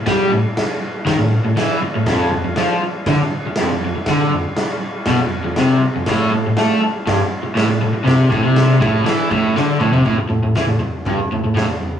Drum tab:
CC |x---x---x---x---|x---x---x---x---|x---x---x---x---|x---x---x---x---|
SD |o---o---o---o---|o---o---o---o---|o---o---o---o---|o---o---o---o---|
T2 |----------------|----------------|----------------|----------------|
FT |----------------|----------------|----------------|----------------|
BD |o-------o-------|o-------o-------|o-------o-------|o-------o-------|

CC |x---x---x-------|----------------|
SD |o---o---o---o---|----o-------o---|
T2 |--------------o-|----------------|
FT |---------------o|o-o-o-o-o-o-o-o-|
BD |o-o---o---o-----|o-------o-------|